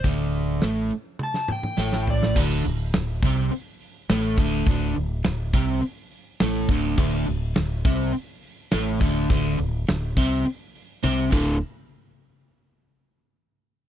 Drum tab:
CC |----------------|x---------------|----------------|x---------------|
HH |x-x-x-x---------|--o-o-o-o-o-o-o-|o-o-o-o-o-o-o-o-|--o-o-o-o-o-o-o-|
SD |----o----o--oo-o|----o-------o---|----o-------o---|----o-------o---|
T1 |--------o-------|----------------|----------------|----------------|
T2 |----------oo----|----------------|----------------|----------------|
FT |--------------o-|----------------|----------------|----------------|
BD |o---------------|o-----o-------o-|o-----o-------o-|o-----o-------o-|

CC |--------------x-|----------------|
HH |o-o-o-o-o-o-----|----------------|
SD |----o-----------|----------------|
T1 |------------o---|----------------|
T2 |----------------|----------------|
FT |----------------|----------------|
BD |o-----o-------o-|----------------|